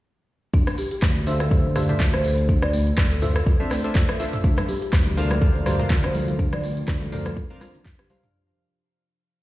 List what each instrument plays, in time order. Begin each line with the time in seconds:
0.53 analog synth bass D2, marimba D4, kick, tambourine
0.67 cross-stick, closed hi-hat, tambourine
0.78 marimba G4, open hi-hat, tambourine
0.91 marimba G4, closed hi-hat, tambourine
1.02 analog synth bass D2, kick, cross-stick, clap, tambourine
1.16 closed hi-hat, tambourine
1.27 synth stab D4 F4 A4 C5 E5, marimba A4, open hi-hat, tambourine
1.40 marimba A3, cross-stick, closed hi-hat, tambourine
1.51 synth stab D4 F4 A4 C5 E5, marimba A4, kick, tambourine
1.65 tambourine
1.76 synth stab D4 F4 A4 C5 E5, marimba G4, cross-stick, mid tom, open hi-hat, tambourine
1.89 synth stab D4 F4 A4 C5 E5, closed hi-hat, mid tom, tambourine
2.00 analog synth bass D2, marimba F4, kick, clap, tambourine
2.14 marimba C5, cross-stick, closed hi-hat, tambourine
2.24 marimba A4, open hi-hat, tambourine
2.38 closed hi-hat, tambourine
2.49 marimba D4, kick, tambourine
2.62 marimba D5, cross-stick, closed hi-hat, tambourine
2.73 marimba A3, open hi-hat, tambourine
2.86 closed hi-hat, tambourine
2.97 analog synth bass D2, kick, cross-stick, clap, tambourine
3.11 marimba A4, closed hi-hat, tambourine
3.21 synth stab D4 F4 A4 C5 E5, marimba A4, mid tom, open hi-hat, tambourine
3.35 marimba A4, cross-stick, closed hi-hat, tambourine
3.46 analog synth bass C2, marimba F4, kick, tambourine
3.60 marimba C4, synth stab D4 F4 A4 C5 E5, tambourine
3.71 marimba A3, cross-stick, clap, open hi-hat, tambourine
3.84 synth stab D4 F4 A4 C5 E5, closed hi-hat, tambourine
3.95 marimba F4, kick, clap, tambourine
4.09 marimba A4, cross-stick, closed hi-hat, tambourine
4.20 synth stab D4 F4 A4 C5 E5, open hi-hat, tambourine
4.33 closed hi-hat, mid tom, tambourine
4.43 analog synth bass D2, ambient pad C3 F3 D4 F4, marimba D4, kick, tambourine, muted conga
4.57 cross-stick, closed hi-hat, tambourine, high conga
4.68 marimba G4, open hi-hat, tambourine, muted conga
4.82 marimba G4, closed hi-hat, tambourine
4.92 analog synth bass D2, kick, cross-stick, clap, tambourine, muted conga
5.06 closed hi-hat, tambourine, high conga
5.17 synth stab D4 F4 A#4 C5 F5, marimba A4, open hi-hat, tambourine, muted conga, low conga
5.30 marimba A3, cross-stick, closed hi-hat, tambourine, high conga
5.42 synth stab D4 F4 A#4 C5 F5, marimba A4, kick, tambourine
5.55 tambourine, muted conga
5.66 synth stab D4 F4 A#4 C5 F5, marimba G4, cross-stick, mid tom, open hi-hat, tambourine, high conga
5.79 synth stab D4 F4 A#4 C5 F5, closed hi-hat, mid tom, tambourine, muted conga
5.90 analog synth bass D2, marimba F4, kick, clap, tambourine, low conga
6.04 marimba C5, cross-stick, closed hi-hat, tambourine, muted conga
6.14 marimba A4, open hi-hat, tambourine, high conga
6.28 closed hi-hat, tambourine, high conga
6.39 marimba D4, kick, tambourine, muted conga
6.52 marimba D5, cross-stick, closed hi-hat, tambourine, high conga
6.63 marimba A3, open hi-hat, tambourine, muted conga
6.77 closed hi-hat, tambourine
6.88 analog synth bass D2, kick, cross-stick, clap, tambourine, muted conga
7.01 marimba A4, closed hi-hat, tambourine, high conga
7.12 synth stab D4 F4 A#4 C5 F5, marimba A4, mid tom, open hi-hat, tambourine, muted conga, low conga
7.25 marimba A4, cross-stick, closed hi-hat, tambourine, high conga
7.37 analog synth bass C2, marimba F4, kick, tambourine
7.50 marimba C4, synth stab D4 F4 A#4 C5 F5, tambourine, muted conga
7.61 marimba F4, cross-stick, clap, open hi-hat, tambourine, high conga
7.74 closed hi-hat, tambourine, muted conga, high conga, low conga
7.85 marimba D4, kick, clap, tambourine
7.99 marimba G4, cross-stick, closed hi-hat, tambourine, muted conga
8.10 synth stab D4 F4 A#4 C5 F5, marimba G4, open hi-hat, tambourine, high conga
8.23 marimba D4, closed hi-hat, mid tom, tambourine